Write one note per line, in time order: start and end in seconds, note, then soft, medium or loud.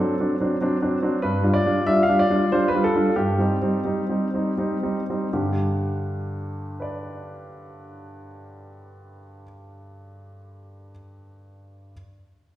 0.00 0.14 F#3 soft
0.00 0.14 C4 soft
0.00 0.14 D4 soft
0.00 0.29 A4 medium
0.20 0.34 F#3 soft
0.20 0.35 C4 soft
0.20 0.35 D4 soft
0.40 0.55 F#3 soft
0.40 0.56 C4 soft
0.40 0.56 D4 soft
0.61 0.76 F#3 soft
0.61 0.76 C4 soft
0.61 0.77 D4 soft
0.82 0.97 F#3 soft
0.82 0.97 C4 soft
0.82 0.97 D4 soft
1.02 1.17 F#3 soft
1.02 1.18 C4 soft
1.02 1.18 D4 soft
1.22 1.43 G2 soft
1.22 1.51 B4 medium
1.43 1.59 G3 soft
1.43 1.59 D4 soft
1.43 1.59 F4 soft
1.54 1.86 D5 medium
1.66 1.81 G3 soft
1.66 1.81 D4 soft
1.66 1.81 F4 soft
1.86 2.02 G3 soft
1.86 2.03 D4 soft
1.86 2.03 F4 soft
1.86 2.03 E5 medium
2.03 2.19 F5 medium
2.08 2.24 G3 soft
2.08 2.24 D4 soft
2.08 2.25 F4 soft
2.19 2.48 D5 medium
2.30 2.46 G3 soft
2.30 2.46 D4 soft
2.30 2.46 F4 soft
2.52 2.68 G3 soft
2.52 2.68 D4 soft
2.52 2.68 F4 soft
2.52 2.68 C5 medium
2.68 2.84 B4 medium
2.74 2.90 G3 soft
2.74 2.90 D4 soft
2.74 2.90 F4 soft
2.84 3.13 A4 medium
2.95 3.11 G3 soft
2.95 3.11 D4 soft
2.95 3.11 F4 soft
3.16 3.38 G2 soft
3.16 4.96 G4 medium
3.38 3.55 G3 soft
3.38 3.56 C4 soft
3.38 3.56 D#4 soft
3.62 3.79 G3 soft
3.62 3.79 C4 soft
3.62 3.79 D#4 soft
3.84 4.02 G3 soft
3.84 4.02 C4 soft
3.84 4.03 D#4 soft
4.09 4.27 G3 soft
4.09 4.27 C4 soft
4.09 4.28 D#4 soft
4.34 4.52 G3 soft
4.34 4.52 C4 soft
4.34 4.53 D#4 soft
4.58 4.76 G3 soft
4.58 4.76 C4 soft
4.58 4.77 D#4 soft
4.83 5.01 G3 soft
4.83 5.02 C4 soft
4.83 5.02 D#4 soft
5.10 5.27 G3 soft
5.10 5.27 C4 soft
5.10 5.28 D#4 soft
5.33 9.43 G2 soft
5.33 9.43 D3 soft
5.33 9.43 G4 soft
6.80 10.90 B4 soft
6.80 10.92 D5 soft